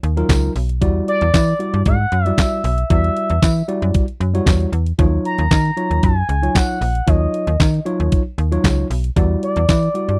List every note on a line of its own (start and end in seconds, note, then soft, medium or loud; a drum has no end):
0.03 0.23 D#2 medium
0.03 closed hi-hat medium
0.16 0.52 F#3 medium
0.16 0.52 D#4 medium
0.16 0.52 F4 medium
0.16 0.52 A#4 medium
0.16 closed hi-hat medium
0.29 0.49 C#2 medium
0.29 kick loud
0.29 snare loud
0.29 clap medium
0.29 closed hi-hat medium
0.29 tambourine medium
0.56 0.83 B1 medium
0.56 open hi-hat medium
0.69 closed hi-hat medium
0.81 1.02 E2 loud
0.81 1.24 G3 medium
0.81 1.25 E4 medium
0.81 1.25 F#4 medium
0.81 1.25 D5 loud
0.81 kick medium
0.81 closed hi-hat medium
1.08 1.82 D5 loud
1.08 closed hi-hat medium
1.21 1.31 E2 medium
1.21 closed hi-hat medium
1.34 1.54 E3 loud
1.34 kick loud
1.34 snare loud
1.34 clap medium
1.34 closed hi-hat medium
1.34 tambourine loud
1.48 closed hi-hat soft
1.59 1.95 G3 medium
1.59 1.96 E4 medium
1.59 1.96 F#4 medium
1.59 1.96 D5 medium
1.59 closed hi-hat medium
1.74 1.83 G2 medium
1.74 closed hi-hat soft
1.86 2.06 G#2 loud
1.86 2.25 F#5 loud
1.86 kick loud
1.86 closed hi-hat medium
2.12 2.32 F#2 medium
2.12 closed hi-hat medium
2.25 2.60 G3 medium
2.25 2.61 E4 medium
2.25 2.61 F#4 medium
2.25 2.61 D5 medium
2.25 2.39 E5 loud
2.25 closed hi-hat medium
2.38 2.91 E5 loud
2.38 kick loud
2.38 snare loud
2.38 clap loud
2.38 closed hi-hat medium
2.38 tambourine medium
2.64 2.84 B1 loud
2.64 open hi-hat medium
2.78 closed hi-hat medium
2.90 3.10 E2 loud
2.90 3.33 G3 medium
2.90 3.33 E4 medium
2.90 3.33 F#4 medium
2.90 3.33 D5 medium
2.90 3.91 E5 loud
2.90 kick loud
2.90 closed hi-hat medium
3.04 closed hi-hat soft
3.17 closed hi-hat medium
3.30 3.40 E2 medium
3.30 closed hi-hat medium
3.42 3.63 E3 loud
3.42 kick loud
3.42 snare loud
3.42 clap medium
3.42 closed hi-hat medium
3.42 tambourine medium
3.56 closed hi-hat soft
3.68 4.04 G3 medium
3.68 4.04 E4 medium
3.68 4.04 F#4 medium
3.68 4.04 D5 medium
3.68 closed hi-hat medium
3.82 3.92 F#2 loud
3.82 closed hi-hat soft
3.94 kick loud
3.94 closed hi-hat medium
4.08 closed hi-hat soft
4.20 4.41 F#2 loud
4.20 closed hi-hat medium
4.34 4.69 G3 medium
4.34 4.69 E4 medium
4.34 4.69 F#4 medium
4.34 4.69 C#5 medium
4.34 closed hi-hat medium
4.46 4.67 E2 medium
4.46 kick loud
4.46 snare loud
4.46 clap medium
4.46 closed hi-hat loud
4.46 tambourine medium
4.60 closed hi-hat soft
4.72 4.93 E2 medium
4.72 closed hi-hat medium
4.86 closed hi-hat medium
4.98 5.19 D#2 loud
4.98 5.05 F3 medium
4.98 5.42 D#4 medium
4.98 5.42 F4 medium
4.98 5.42 C#5 medium
4.98 kick loud
4.98 closed hi-hat medium
5.05 5.45 F#3 medium
5.25 6.05 A#5 loud
5.25 closed hi-hat medium
5.38 5.48 D#2 loud
5.38 closed hi-hat medium
5.51 5.71 D#3 loud
5.51 kick loud
5.51 snare loud
5.51 clap medium
5.51 closed hi-hat medium
5.51 tambourine medium
5.65 closed hi-hat soft
5.76 6.13 F#3 medium
5.76 6.13 D#4 medium
5.76 6.13 F4 medium
5.76 6.13 C#5 medium
5.76 closed hi-hat medium
5.91 6.00 D#2 medium
5.91 closed hi-hat soft
6.03 6.23 F#2 loud
6.03 6.57 G#5 loud
6.03 kick loud
6.03 closed hi-hat medium
6.29 6.49 C#2 medium
6.29 closed hi-hat medium
6.42 6.77 F#3 medium
6.42 6.78 D#4 medium
6.42 6.78 F4 medium
6.42 6.78 C#5 medium
6.42 closed hi-hat medium
6.55 7.10 F#5 loud
6.55 kick loud
6.55 snare loud
6.55 clap medium
6.55 closed hi-hat medium
6.55 tambourine loud
6.81 7.01 A#1 medium
6.81 open hi-hat medium
6.95 closed hi-hat medium
7.07 7.28 D#2 loud
7.07 7.50 F#3 medium
7.07 7.50 D#4 medium
7.07 7.50 F4 medium
7.07 7.51 C#5 medium
7.07 7.86 D#5 medium
7.07 kick loud
7.07 closed hi-hat medium
7.34 closed hi-hat medium
7.47 7.57 D#2 medium
7.47 closed hi-hat medium
7.60 7.80 D#3 loud
7.60 kick loud
7.60 snare loud
7.60 clap medium
7.60 closed hi-hat medium
7.60 tambourine medium
7.74 closed hi-hat soft
7.85 8.21 F#3 medium
7.85 8.22 D#4 medium
7.85 8.22 F4 medium
7.85 8.22 C#5 loud
7.85 closed hi-hat medium
8.00 8.09 D#2 medium
8.00 closed hi-hat soft
8.12 kick loud
8.12 closed hi-hat medium
8.38 8.58 D#2 medium
8.38 closed hi-hat medium
8.51 8.86 F#3 medium
8.51 8.87 D#4 medium
8.51 8.87 F4 medium
8.51 8.87 C#5 loud
8.51 closed hi-hat medium
8.64 8.84 C#2 medium
8.64 kick loud
8.64 snare loud
8.64 clap medium
8.64 closed hi-hat medium
8.64 tambourine medium
8.90 9.10 B1 medium
8.90 open hi-hat medium
9.04 closed hi-hat medium
9.16 9.37 E2 loud
9.16 9.59 G3 medium
9.16 9.59 E4 medium
9.16 9.59 F#4 medium
9.16 9.60 D5 loud
9.16 kick medium
9.16 closed hi-hat medium
9.43 10.20 D5 loud
9.43 closed hi-hat medium
9.56 9.66 E2 loud
9.56 closed hi-hat medium
9.69 9.89 E3 loud
9.69 kick loud
9.69 snare loud
9.69 clap medium
9.69 closed hi-hat medium
9.69 tambourine loud
9.83 closed hi-hat soft
9.94 10.20 G3 medium
9.94 10.20 E4 medium
9.94 10.20 F#4 medium
9.94 10.20 D5 medium
9.94 closed hi-hat medium
10.08 10.18 G2 medium
10.08 closed hi-hat soft